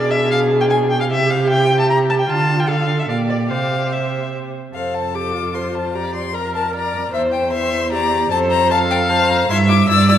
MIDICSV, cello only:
0, 0, Header, 1, 2, 480
1, 0, Start_track
1, 0, Key_signature, -1, "major"
1, 0, Tempo, 396040
1, 1333, Time_signature, 3, 2, 24, 8
1, 3258, Tempo, 407609
1, 7098, Tempo, 394477
1, 12249, End_track
2, 0, Start_track
2, 0, Title_t, "Cello"
2, 0, Program_c, 0, 42
2, 0, Note_on_c, 0, 47, 65
2, 1335, Note_on_c, 0, 48, 66
2, 1353, Note_off_c, 0, 47, 0
2, 2769, Note_off_c, 0, 48, 0
2, 2776, Note_on_c, 0, 50, 62
2, 3715, Note_off_c, 0, 50, 0
2, 3734, Note_on_c, 0, 46, 58
2, 4218, Note_on_c, 0, 48, 50
2, 4236, Note_off_c, 0, 46, 0
2, 5439, Note_off_c, 0, 48, 0
2, 5679, Note_on_c, 0, 41, 43
2, 8493, Note_off_c, 0, 41, 0
2, 8539, Note_on_c, 0, 40, 58
2, 9949, Note_off_c, 0, 40, 0
2, 9979, Note_on_c, 0, 41, 78
2, 11389, Note_off_c, 0, 41, 0
2, 11414, Note_on_c, 0, 43, 78
2, 11838, Note_off_c, 0, 43, 0
2, 11889, Note_on_c, 0, 43, 81
2, 12249, Note_off_c, 0, 43, 0
2, 12249, End_track
0, 0, End_of_file